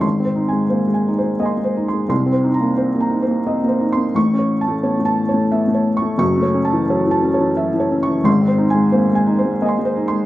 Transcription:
0.00 2.05 G#1 medium
0.00 2.05 G#2 medium
0.00 0.39 C6 medium
0.20 0.48 C4 medium
0.25 0.63 C5 medium
0.35 0.65 D#4 medium
0.48 0.86 G#5 medium
0.53 0.82 G#3 medium
0.70 0.89 A#3 soft
0.70 1.08 C5 medium
0.88 1.16 G#3 medium
0.94 1.32 G#5 medium
1.08 1.35 D#4 medium
1.18 1.56 C5 medium
1.24 1.52 G#3 soft
1.39 1.58 A#3 soft
1.39 2.06 D#5 medium
1.39 2.07 G#5 soft
1.45 1.87 C6 soft
1.57 1.86 G#3 medium
1.64 2.01 C5 medium
1.77 2.04 D#4 medium
1.88 2.08 C6 medium
1.93 2.10 G#3 medium
2.09 4.11 C2 medium
2.09 4.11 C3 medium
2.09 2.46 C6 medium
2.26 2.54 C4 medium
2.32 2.69 C5 medium
2.44 2.71 D#4 medium
2.54 2.91 A#5 medium
2.60 2.88 A#3 medium
2.77 2.95 C4 soft
2.77 3.14 C5 medium
2.95 3.23 A#3 medium
3.00 3.38 A#5 medium
3.10 3.39 D#4 medium
3.22 3.60 C5 medium
3.28 3.57 A#3 medium
3.47 3.64 C4 medium
3.47 3.83 D#5 medium
3.63 3.91 A#3 medium
3.69 4.06 C5 medium
3.81 4.08 D#4 medium
3.92 4.15 C6 medium
3.97 4.15 A#3 medium
4.14 6.16 A1 medium
4.14 6.16 A2 medium
4.14 4.52 C#6 medium
4.34 4.60 C#4 medium
4.39 4.75 C#5 medium
4.61 4.98 A5 medium
4.68 4.95 A3 medium
4.83 5.01 B3 soft
4.83 5.20 C#5 medium
4.99 5.27 A3 medium
5.05 5.42 A5 medium
5.29 5.65 C#5 medium
5.34 5.62 A3 medium
5.52 5.69 B3 medium
5.52 5.88 E5 medium
5.68 5.96 A3 medium
5.74 6.11 C#5 medium
5.97 6.17 C#6 medium
6.02 6.20 A3 medium
6.18 8.21 F#1 medium
6.18 8.21 F#2 medium
6.18 6.56 C#6 medium
6.37 6.65 A3 medium
6.42 6.80 C#5 medium
6.54 6.82 C#4 medium
6.65 7.02 A5 medium
6.73 7.00 E3 medium
6.90 7.07 F#3 medium
6.90 7.27 C#5 medium
7.07 7.34 E3 medium
7.11 7.49 A5 medium
7.23 7.51 C#4 medium
7.34 7.71 C#5 medium
7.41 7.68 E3 medium
7.57 7.75 F#3 medium
7.57 7.94 E5 medium
7.74 8.02 E3 medium
7.80 8.17 C#5 medium
7.91 8.19 C#4 medium
8.03 8.26 C#6 medium
8.08 8.26 E3 medium
8.23 10.25 G#1 medium
8.23 10.25 G#2 medium
8.23 8.62 C6 medium
8.41 8.70 C4 medium
8.48 8.85 C5 medium
8.58 8.87 D#4 medium
8.70 9.07 G#5 medium
8.75 9.03 G#3 medium
8.92 9.10 A#3 medium
8.92 9.30 C5 medium
9.10 9.38 G#3 medium
9.15 9.52 G#5 medium
9.26 9.55 D#4 medium
9.39 9.75 C5 medium
9.45 9.73 G#3 medium
9.62 9.79 A#3 medium
9.62 10.26 D#5 medium
9.62 10.26 G#5 medium
9.68 10.06 C6 medium
9.79 10.06 G#3 medium
9.85 10.21 C5 medium
9.96 10.23 D#4 medium
10.08 10.26 C6 medium
10.13 10.26 G#3 medium

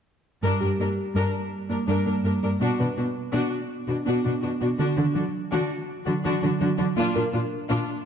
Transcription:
0.43 0.50 G2 soft
0.43 0.54 G3 medium
0.43 0.60 D4 soft
0.43 0.60 A#4 soft
0.61 0.68 G2 soft
0.61 0.68 D4 soft
0.61 0.72 G4 soft
0.61 0.68 A#4 soft
0.78 0.86 G2 soft
0.78 0.90 A#3 soft
0.78 0.87 D4 soft
0.78 0.87 A#4 soft
1.14 1.22 G2 soft
1.14 1.26 G3 medium
1.14 1.33 D4 soft
1.14 1.33 A#4 soft
1.70 1.77 G2 soft
1.70 1.81 A#3 medium
1.70 1.77 D4 soft
1.70 1.77 A#4 soft
1.87 1.95 G2 soft
1.87 1.99 G3 medium
1.87 2.05 D4 soft
1.87 2.05 A#4 soft
2.06 2.13 G2 soft
2.06 2.17 A#3 soft
2.06 2.14 D4 soft
2.06 2.14 A#4 soft
2.23 2.31 G2 soft
2.23 2.36 A#3 soft
2.23 2.32 D4 soft
2.23 2.32 A#4 soft
2.42 2.49 G2 soft
2.42 2.54 A#3 soft
2.42 2.50 D4 soft
2.42 2.50 A#4 soft
2.60 2.68 B2 soft
2.60 2.72 B3 medium
2.60 2.77 D4 soft
2.60 2.77 F#4 medium
2.79 2.86 B2 soft
2.79 2.86 D4 soft
2.79 2.86 F#4 soft
2.79 2.91 B4 soft
2.97 3.04 B2 soft
2.97 3.04 D4 soft
2.97 3.08 D4 soft
2.97 3.05 F#4 soft
3.33 3.40 B2 soft
3.33 3.45 B3 medium
3.33 3.50 D4 medium
3.33 3.50 F#4 medium
3.88 3.95 B2 soft
3.88 3.95 D4 soft
3.88 3.99 D4 soft
3.88 3.95 F#4 soft
4.06 4.13 B2 soft
4.06 4.17 B3 medium
4.06 4.23 D4 soft
4.06 4.23 F#4 soft
4.24 4.32 B2 soft
4.24 4.31 D4 soft
4.24 4.36 D4 medium
4.24 4.31 F#4 soft
4.42 4.50 B2 soft
4.42 4.53 D4 soft
4.42 4.50 D4 soft
4.42 4.50 F#4 soft
4.60 4.68 B2 soft
4.60 4.72 D4 soft
4.60 4.68 D4 soft
4.60 4.68 F#4 soft
4.78 4.85 D3 medium
4.78 4.90 D3 medium
4.78 4.96 D4 soft
4.78 4.96 F#4 soft
4.97 5.04 D3 soft
4.97 5.04 D4 soft
4.97 5.08 D4 soft
4.97 5.05 F#4 soft
5.15 5.22 D3 soft
5.15 5.26 F#3 soft
5.15 5.22 D4 soft
5.15 5.23 F#4 soft
5.51 5.59 D3 medium
5.51 5.63 D3 medium
5.51 5.69 D4 medium
5.51 5.69 F#4 medium
6.06 6.14 D3 soft
6.06 6.17 F#3 medium
6.06 6.13 D4 soft
6.06 6.13 F#4 soft
6.24 6.32 D3 medium
6.24 6.36 D3 medium
6.24 6.41 D4 soft
6.24 6.41 F#4 soft
6.42 6.50 D3 soft
6.42 6.54 F#3 medium
6.42 6.49 D4 soft
6.42 6.49 F#4 soft
6.61 6.68 D3 soft
6.61 6.72 F#3 soft
6.61 6.68 D4 soft
6.61 6.68 F#4 soft
6.78 6.86 D3 soft
6.78 6.90 F#3 soft
6.78 6.85 D4 soft
6.78 6.85 F#4 soft
6.96 7.04 A#2 medium
6.96 7.08 A#3 medium
6.96 7.13 D4 medium
6.96 7.13 F4 medium
7.14 7.22 A#2 soft
7.14 7.22 D4 soft
7.14 7.22 F4 soft
7.14 7.26 A#4 medium
7.33 7.40 A#2 soft
7.33 7.41 D4 soft
7.33 7.44 D4 soft
7.33 7.40 F4 soft
7.69 7.77 A#2 medium
7.69 7.81 A#3 medium
7.69 7.86 D4 medium
7.69 7.86 F4 medium

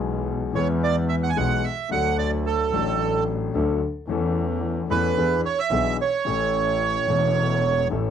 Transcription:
0.00 0.51 B1 medium
0.00 0.51 B2 medium
0.00 0.50 E3 medium
0.00 0.51 G#3 medium
0.00 0.52 B3 medium
0.00 0.53 G#4 medium
0.53 1.33 E2 medium
0.53 1.33 E3 medium
0.53 1.32 G#3 medium
0.53 1.33 B3 medium
0.53 0.68 C#5 medium
0.57 1.34 G#4 medium
0.84 0.96 D5 medium
1.09 1.16 E5 medium
1.23 1.31 F#5 medium
1.30 1.37 G#5 medium
1.36 1.60 B1 medium
1.36 1.60 B2 medium
1.36 1.60 E3 medium
1.36 1.60 G#3 medium
1.36 1.60 B3 medium
1.36 1.60 G#4 medium
1.36 1.65 F#5 medium
1.64 1.90 E5 medium
1.89 2.69 D2 medium
1.89 2.69 D3 medium
1.89 2.68 F#3 medium
1.89 2.69 A3 medium
1.89 2.69 D4 medium
1.89 2.70 A4 medium
1.89 2.17 F#5 medium
2.18 2.31 D5 medium
2.46 3.24 A4 medium
2.72 3.51 A1 medium
2.72 3.51 A2 medium
2.72 3.50 F#3 medium
2.72 3.50 A3 medium
2.72 3.51 D4 medium
2.72 3.52 A4 medium
3.54 3.78 D2 medium
3.54 3.77 D3 medium
3.54 3.78 F#3 medium
3.54 3.78 A3 medium
3.54 3.78 D4 medium
3.54 3.78 A4 medium
4.08 4.86 E2 medium
4.08 4.87 E3 medium
4.08 4.86 A3 medium
4.08 4.87 C#4 medium
4.08 4.88 A4 medium
4.89 5.13 E2 medium
4.89 5.13 E3 medium
4.89 5.13 A3 medium
4.89 5.14 C#4 medium
4.89 5.14 A4 medium
4.89 5.41 B4 medium
5.17 5.41 E2 medium
5.17 5.41 E3 medium
5.17 5.41 B3 medium
5.17 5.41 D4 medium
5.17 5.41 G#4 medium
5.46 5.59 C#5 medium
5.59 5.97 E5 medium
5.71 5.95 B1 medium
5.71 5.95 B2 medium
5.71 5.95 E3 medium
5.71 5.95 B3 medium
5.71 5.95 D4 medium
5.71 5.95 G#4 medium
6.02 7.88 C#5 medium
6.25 7.04 A1 medium
6.25 7.05 A2 medium
6.25 7.04 E3 medium
6.25 7.04 A3 medium
6.25 7.05 C#4 medium
6.25 7.05 A4 medium
7.08 7.86 E1 medium
7.08 7.87 E1 medium
7.08 7.87 E2 medium
7.08 7.86 E3 medium
7.08 7.87 A3 medium
7.08 7.88 C#4 medium
7.12 7.88 A4 medium
7.91 8.10 A1 medium
7.91 8.10 A2 medium
7.91 8.10 E3 medium
7.91 8.10 A3 medium
7.91 8.10 C#4 soft
7.91 8.10 A4 medium

